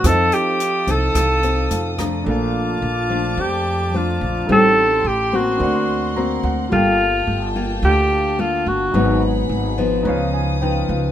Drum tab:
HH |xxxxxxxx|--------|--------|--------|
SD |r---r--r|--------|--------|--------|
BD |o--oo--o|--------|--------|--------|

HH |--------|
SD |--------|
BD |--------|